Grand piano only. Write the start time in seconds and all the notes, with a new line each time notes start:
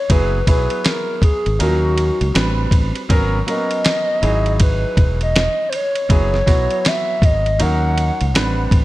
0.09 F#3 B3 E4 G#4
0.47 F#3 B3 E4 G#4
1.59 F3 C#4 D#4 A#4
1.65 F#3
2.34 G3 C4 D4 B4
3.09 F#3 B3 C#4 A#4
3.47 F#3 A#3 C#4 A#4
3.54 B3
4.22 F#3 D#4 E4 G#4
6.09 F#3 B3 E4 G#4
6.46 F#3 B3 E4 F#4
7.59 F#3 C#4 D#4 A#4
8.34 G3 B3 D4 B4
8.41 C4